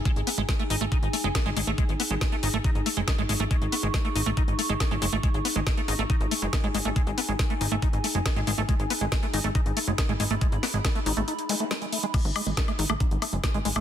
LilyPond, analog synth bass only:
\new Staff \with { instrumentName = "Analog synth bass" } { \clef bass \time 4/4 \key gis \phrygian \tempo 4 = 139 r16 gis,,16 r16 gis,,16 r8 gis,,16 gis,,16 r16 gis,,16 r16 fis,,16 r16 gis,,16 gis,,16 gis,,16 | r16 gis,,16 r16 gis,,16 r8 gis,,16 gis,,16 r16 gis,,16 r16 fis,,16 r16 gis,,16 gis,,16 gis,,16 | r16 gis,,16 r16 gis,,16 r8 gis,,16 gis,,16 r16 gis,,16 r16 gis,,16 r16 gis,,16 fis,,16 gis,,16 | r16 gis,,16 r16 gis,,16 r8 gis,,16 gis,,16 r16 gis,,16 r16 fis,,16 r16 gis,,16 gis,,16 gis,,16 |
r16 gis,,16 r16 gis,,16 r8 gis,,16 gis,,16 r16 gis,,16 r16 fis,,16 r16 gis,,16 gis,,16 gis,,16 | r16 gis,,16 r16 gis,,16 r8 gis,,16 gis,,16 r16 gis,,16 r16 fis,,16 r16 gis,,16 gis,,16 gis,,16 | r16 gis,,16 r16 gis,,16 r8 gis,,16 gis,,16 r2 | r16 gis,,16 r16 gis,,16 r8 gis,,16 gis,,16 r16 gis,,16 r16 fis,,16 r16 gis,,16 gis,,16 gis,,16 | }